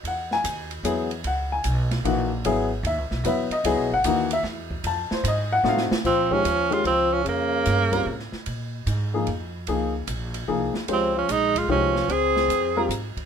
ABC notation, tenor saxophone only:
X:1
M:3/4
L:1/8
Q:"Swing" 1/4=149
K:C#dor
V:1 name="Tenor saxophone"
z6 | z6 | z6 | z6 |
z6 | [K:Bbdor] C D2 F C D | B,4- B, z | z6 |
z6 | C D E F D2 | A4 z2 |]